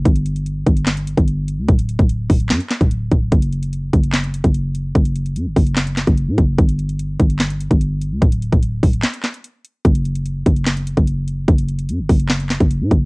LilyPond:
<<
  \new Staff \with { instrumentName = "808-style bass" } { \clef bass \time 4/4 \key g \lydian \tempo 4 = 147 g,,4. g,,4~ g,,16 g,,4 d,16 | d,,8. d,,8. d,,8 fis,16 r8 d,,8. d,,8 | fis,,4. fis,,4~ fis,,16 fis,,4~ fis,,16 | fis,,4 fis,16 fis,,16 fis,,4~ fis,,16 fis,,8 a,16 fis,,8 |
g,,4. g,,4~ g,,16 g,,4 d,16 | d,,8. d,,8. d,,8 r2 | fis,,4. fis,,4~ fis,,16 fis,,4~ fis,,16 | fis,,4 fis,16 fis,,16 fis,,4~ fis,,16 fis,,8 a,16 fis,,8 | }
  \new DrumStaff \with { instrumentName = "Drums" } \drummode { \time 4/4 <hh bd>16 hh16 hh16 hh16 hh8 <hh bd>16 hh16 <hc hh sn>16 hh16 hh16 <hh bd>16 hh8 hh8 | <hh bd>16 hh16 hh16 <hh bd>16 hh8 <hho bd>16 hh16 <hc hh sn>16 hh16 <hc hh sn>16 <hh bd>16 hh8 <hh bd>8 | <hh bd>16 hh16 hh16 hh16 hh8 <hh bd>16 hh16 <hc hh sn>16 hh16 hh16 <hh bd>16 hh8 hh8 | <hh bd>16 hh16 hh16 hh16 hh8 <hho bd>16 hh16 <hc hh sn>16 hh16 <hc hh sn>16 <hh bd>16 hh8 <hh bd>8 |
<hh bd>16 hh16 hh16 hh16 hh8 <hh bd>16 hh16 <hc hh sn>16 hh16 hh16 <hh bd>16 hh8 hh8 | <hh bd>16 hh16 hh16 <hh bd>16 hh8 <hho bd>16 hh16 <hc hh sn>16 hh16 <hc hh sn>16 hh16 hh8 hh8 | <hh bd>16 hh16 hh16 hh16 hh8 <hh bd>16 hh16 <hc hh sn>16 hh16 hh16 <hh bd>16 hh8 hh8 | <hh bd>16 hh16 hh16 hh16 hh8 <hho bd>16 hh16 <hc hh sn>16 hh16 <hc hh sn>16 <hh bd>16 hh8 <hh bd>8 | }
>>